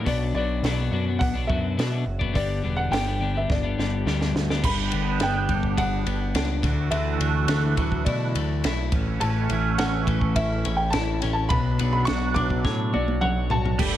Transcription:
Already playing: D4
0.05 B1 B2 F#3 B3 D4 D5, kick, open hi-hat
0.34 B1 B2 F#3 B3 D4 D5
0.63 B1 B2 F#3 B3 D4, snare, open hi-hat
0.78 F#3 B3 D4
0.91 F#2 B2 F#3 B3 D4 F#4
1.06 F#3 B3 D4
1.19 B1 B3 F#5, kick, open hi-hat
1.34 F#3 B3 D4
1.47 F#2 B2 F#3 B3 D4 F#4 E5, kick
1.77 B2 F#3 B3 D4, snare, open hi-hat
1.90 F#3 B3 D4
2.05 F#1 F#3, muted clean electric guitar stroke
2.19 F#3 B3 D4, kick
2.33 G1 G2 D3 G3 B3 D4 D5, kick, open hi-hat
2.62 E1 D3 G3 B3 D4
2.77 F#5
2.91 G1 G2 D3 G3 B3 D4 G5, snare, open hi-hat
3.06 G3 B3 D4
3.20 D3 G3 B3 D4 G4
3.34 G3 B3 D4 E5
3.49 G1 B3 D5, kick, snare
3.63 G3 B3 D4
3.77 G1 D3 G3 B3 D4 G4, snare
4.06 D2 G2 D3 G3 B3 D4, snare
4.20 G3 B3 D4, snare
4.35 D2 B3, muted clean electric guitar stroke, snare
4.50 G3 B3 D4, snare
4.63 G1 G2 B3 D4 G4 B5, kick, crash
4.92 G1 D3, ride
5.20 G1 B3 G5, snare, ride
5.49 G1 G3, kick, ride
5.63 kick
5.77 G1 D4 F#5, kick, ride
6.06 G1 B3, ride
6.35 C#2 D4, snare, ride
6.62 D2 D3 E3 A3 D4 F#4, kick, snare, ride
6.91 D2 D3 E5, ride
7.20 D2 D3, ride
7.48 D2 A3, snare, ride
7.77 D2 F#3, kick, ride
7.92 kick
8.05 B2 E4 D5, kick, ride
8.35 D2 A3, ride
8.64 B1 E4, snare, ride
8.92 A1 A2 E3 A3 C#4, kick, ride
9.20 A1 A2 A5, ride
9.49 A1 E3, ride
9.78 A1 C#4 F#5, snare, ride
10.07 A1 A3, kick, ride
10.21 kick
10.36 A1 E4 E5, kick, ride
10.65 A1 C#4, ride
10.77 G5
10.90 A1 E4 A5, snare, ride
11.22 A1 C#4, snare, ride
11.33 A5
11.49 B2 F#3 B5, kick, ride
11.53 D4
11.79 B1 B3, ride
11.93 B5
12.05 B1 F#4 C#6, snare, ride
12.34 B1 D4 D6, kick, ride
12.50 kick
12.65 A2 C#5, kick, snare
12.93 B1 F#4 D5, high tom
13.08 high tom
13.21 B1 C#5 F#5, mid tom
13.50 B1 F#4 A5, floor tom
13.66 floor tom
13.79 G1 G3 A3 D4 G4 A4 B4 G5 B5, kick, crash

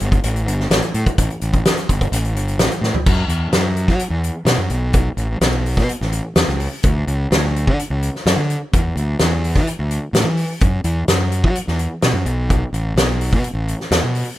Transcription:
0.00 G1, closed hi-hat
0.12 kick, closed hi-hat
0.24 A1, closed hi-hat
0.36 closed hi-hat
0.47 G1, closed hi-hat
0.60 snare
0.70 A1, snare, closed hi-hat
0.82 closed hi-hat
0.94 A2, closed hi-hat
1.06 kick, closed hi-hat
1.18 A1, kick, closed hi-hat
1.30 closed hi-hat
1.41 A1, closed hi-hat
1.53 kick, closed hi-hat
1.65 snare, closed hi-hat
1.77 snare, closed hi-hat
1.89 G1, kick, closed hi-hat
2.01 kick, closed hi-hat
2.12 A1, closed hi-hat
2.25 closed hi-hat
2.36 G1, closed hi-hat
2.48 closed hi-hat
2.58 A1, snare, closed hi-hat
2.71 closed hi-hat
2.81 A2, snare
2.94 floor tom
3.06 F#2, kick, crash
3.28 E2, closed hi-hat
3.52 F#2, snare, closed hi-hat
3.77 closed hi-hat
3.88 F#3, kick, snare
3.99 closed hi-hat
4.10 E2
4.24 closed hi-hat
4.45 B2, snare, closed hi-hat
4.58 F#2
4.70 B1, closed hi-hat
4.93 kick, closed hi-hat
5.17 A1, closed hi-hat
5.41 B1, snare, closed hi-hat
5.66 open hi-hat
5.77 B2, kick, snare
5.89 closed hi-hat
6.01 A1, snare
6.12 closed hi-hat
6.36 E2, snare, closed hi-hat
6.48 C#2, snare
6.60 open hi-hat
6.83 D2, kick, closed hi-hat
7.07 C#2, closed hi-hat
7.31 D2, snare, closed hi-hat
7.56 closed hi-hat
7.67 D3, kick
7.79 closed hi-hat
7.90 C#2
8.03 closed hi-hat
8.15 snare
8.26 F#2, snare, closed hi-hat
8.36 D3
8.50 closed hi-hat
8.73 E2, kick, closed hi-hat
8.96 D2, closed hi-hat
9.19 E2, snare, closed hi-hat
9.44 open hi-hat
9.55 E3, kick, snare
9.67 closed hi-hat
9.79 D2
9.91 closed hi-hat
10.13 A2, snare, closed hi-hat
10.24 E3
10.37 open hi-hat
10.61 F#2, kick, closed hi-hat
10.84 E2, closed hi-hat
11.08 F#2, snare, closed hi-hat
11.32 closed hi-hat
11.44 F#3, kick
11.55 closed hi-hat
11.67 E2, snare
11.79 closed hi-hat
12.02 B2, snare, closed hi-hat
12.13 F#2
12.25 B1, closed hi-hat
12.50 kick, closed hi-hat
12.73 A1, closed hi-hat
12.95 B1, snare, closed hi-hat
13.21 open hi-hat
13.33 B2, kick
13.44 closed hi-hat
13.53 A1
13.68 closed hi-hat
13.80 snare
13.91 E2, snare, closed hi-hat
14.03 B2
14.15 open hi-hat

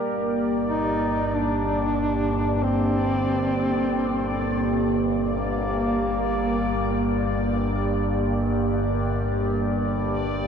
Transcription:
Already playing: A#3 G4 D5
0.01 G1 G2 D5
0.68 D#4
1.35 D4
2.63 C4
5.26 A#3

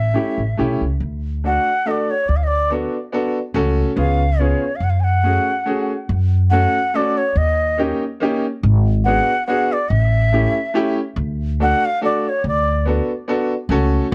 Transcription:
Already playing: A1 E5
0.14 A3 C#4 E4 G4
0.38 A1
0.57 B1 A3 C#4 E4 G4
0.81 C#2
1.00 D2
1.44 A3 D4 F#4 A4 F#5
1.85 A3 D4 F#4 A4 D#5
1.91 D5
2.11 C#5
2.29 D2 D5
2.37 F5
2.44 D5 D#5
2.70 B3 D4 F#4 A4
3.12 B3 D4 F#4 A4
3.54 C#2 A3 C#4 F#4 A4
3.96 C#2 B3 C#4 F4 G#4 F5
4.39 B3 C#4 F4 G#4 C#5
4.76 F5
4.80 F#2 F#5
4.90 F5
5.00 F#5 G#5
5.23 A3 C#4 F#4 G#4
5.65 A3 C#4 F#4 G#4
6.09 F#2
6.50 A3 C#4 F#4 A4 F#5
6.94 A3 C#4 F#4 A4 D5
7.18 C#5
7.35 D#2 D#5
7.78 A#3 C#4 D#4 G4
8.20 A#3 C#4 D#4 G4
8.63 G#1
9.05 B3 D4 F#4 G#4 F#5
9.47 B3 D4 F#4 G#4 F#5
9.72 D5
9.89 A1 E5
10.32 A3 C#4 E4 G4
10.74 A3 C#4 E4 G4
11.16 D2
11.60 A3 D4 F#4 A4 F#5
11.85 F5
12.01 A3 D4 F#4 A4 D5
12.29 C#5
12.44 D2 D5
12.86 B3 D4 F#4 A4
13.28 B3 D4 F#4 A4
13.69 C#2 A3 C#4 F#4 A4

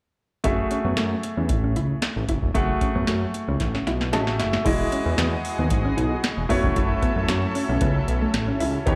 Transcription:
0.44 F#1 A3 F#4 G#4 E5, kick, closed hi-hat
0.59 muted clean electric guitar stroke
0.71 C#4, closed hi-hat
0.85 F#2 B3
0.97 F#2 A3, snare, closed hi-hat
1.23 muted clean electric guitar stroke, closed hi-hat
1.37 E2 C#4
1.49 A1, muted clean electric guitar stroke, kick, closed hi-hat
1.64 C#4
1.76 C#2 E4, closed hi-hat
2.02 snare, closed hi-hat
2.16 A1
2.29 F#1 E4, kick, closed hi-hat
2.42 E1, kick
2.54 F#1 A3 F#4 G#4 F#5, kick, closed hi-hat
2.69 muted clean electric guitar stroke
2.81 C#4, kick, closed hi-hat
2.95 F#2 B3
3.07 F#2 A3, snare, closed hi-hat
3.34 muted clean electric guitar stroke, closed hi-hat
3.48 C#2 C#4
3.60 A1, muted clean electric guitar stroke, kick, snare, closed hi-hat
3.75 C#4, snare
3.87 B1 E4, snare, closed hi-hat
4.01 snare
4.12 A1 A3 C#4 F#4 G#4 D#5 A5, snare, closed hi-hat
4.20 E5
4.27 muted clean electric guitar stroke, snare
4.39 F#1 E5, snare, closed hi-hat
4.53 A3, snare
4.65 E1 E3 G#3 E4 F#4 G#4 D#5, kick, closed hi-hat, crash
4.80 muted clean electric guitar stroke
4.92 C#4, closed hi-hat
5.06 E2
5.18 E2 B3, snare, closed hi-hat
5.33 muted clean electric guitar stroke
5.45 open hi-hat
5.59 D#2 B3
5.70 G#1, muted clean electric guitar stroke, kick, closed hi-hat
5.85 C#4
5.97 B1 D#4, closed hi-hat
6.24 muted clean electric guitar stroke, snare, closed hi-hat
6.37 E1
6.49 F#1 F#3 A3 B3 C#4 E4 F#4 A4 C#5, kick, open hi-hat
6.64 E1 C#4, kick
6.76 F#1 E4, kick, closed hi-hat
7.02 B3, kick, closed hi-hat
7.16 F#2, muted clean electric guitar stroke
7.28 F#2, muted clean electric guitar stroke, snare, closed hi-hat
7.55 C#4, open hi-hat
7.69 B1 C#4
7.81 C#2 B3, kick, closed hi-hat
8.08 B1, muted clean electric guitar stroke, closed hi-hat
8.22 A3
8.34 A1, muted clean electric guitar stroke, snare, closed hi-hat
8.48 C#4
8.60 C#2 E4, open hi-hat
8.86 D#2 D#3 B3 D#4 G4 C#5 F#5, kick, closed hi-hat

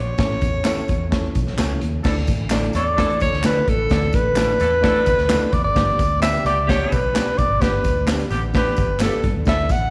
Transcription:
Already playing: A#1 C#5
0.18 A1 A2 C#4 E4 A4 C#5, kick, snare, closed hi-hat, tambourine
0.41 E2, kick, closed hi-hat, tambourine
0.64 C#4 E4 A4 C#5, snare, clap, closed hi-hat, tambourine
0.77 muted fingered electric bass stroke
0.88 E2, kick, closed hi-hat, tambourine
1.11 C#4 E4 A4 C#5, kick, snare, closed hi-hat, tambourine
1.35 B1, kick, closed hi-hat, tambourine
1.47 snare
1.57 C#2 C#4 E4 A4 C#5, snare, clap, closed hi-hat, tambourine
1.81 D#2, closed hi-hat
2.03 D2 D3 E3 A3 D4 E4 A4 D5, kick, snare, crash, tambourine
2.27 A1, kick, closed hi-hat, tambourine
2.50 A3 D4 E4 A4 D5, snare, clap, closed hi-hat, tambourine
2.63 closed hi-hat
2.73 E2 E3 D4 A4 D5, closed hi-hat, tambourine
2.97 E3 A3 D4 E4 A4 D5, kick, snare, closed hi-hat
3.10 closed hi-hat
3.20 D2 C#5, kick, closed hi-hat, tambourine
3.33 D2, snare
3.43 D3 A3 D4 E4 A4 B4 D5, snare, clap, closed hi-hat, tambourine
3.68 A1 A4, kick, closed hi-hat
3.90 D2 D3 E3 A3 D4 E4 A4 D5, kick, snare, closed hi-hat, tambourine
4.13 A1 B4, kick, closed hi-hat, tambourine
4.36 A3 D4 E4 A4 D5, snare, clap, closed hi-hat, tambourine
4.60 E2 E3 D4 A4, closed hi-hat, tambourine
4.81 E3 A3 D4 E4 A4 D5, kick, snare, closed hi-hat
4.95 closed hi-hat
5.06 D2, kick, closed hi-hat, tambourine
5.18 D2, snare
5.28 A3 D4 E4 A4 D5, snare, clap, closed hi-hat, tambourine
5.52 E2 D5, kick, closed hi-hat, tambourine
5.63 G#1 D5
5.75 G1 G2 D3 B3 D4 G4 B4 D5, kick, snare, closed hi-hat, tambourine
5.99 D2, kick, closed hi-hat, tambourine
6.21 B3 D4 G4 B4 D5 E5, snare, clap, closed hi-hat, tambourine
6.34 closed hi-hat
6.45 C#2 D3 B3 G4 D5, closed hi-hat, tambourine
6.67 D3 B3 D4 G4 B4 C#5 D5, kick, snare, closed hi-hat, tambourine
6.92 B1 B4, kick, closed hi-hat, tambourine
7.14 B3 D4 G4 B4 D5, snare, clap, closed hi-hat, tambourine
7.38 B1 D5, kick, closed hi-hat, tambourine
7.49 G#1
7.61 G1 G2 D3 B3 D4 G4 B4 D5, kick, snare, closed hi-hat, tambourine
7.84 D2, kick, closed hi-hat, tambourine
8.07 B3 D4 G4 B4 D5, snare, clap, closed hi-hat, tambourine
8.20 closed hi-hat
8.30 A1 D3 B3 G4, closed hi-hat, tambourine
8.53 D3 B3 D4 G4 B4 D5, kick, snare, closed hi-hat, tambourine
8.67 closed hi-hat
8.76 G1, kick, closed hi-hat, tambourine
8.88 G1
8.99 B3 D4 G4 A4 B4 D5, snare, clap, closed hi-hat, tambourine
9.24 G2, kick, closed hi-hat
9.36 D#2
9.45 D2 D3 E3 A3 D4 E4 A4 D5 E5, kick, snare, closed hi-hat, tambourine
9.69 A1 F#5, kick, closed hi-hat, tambourine

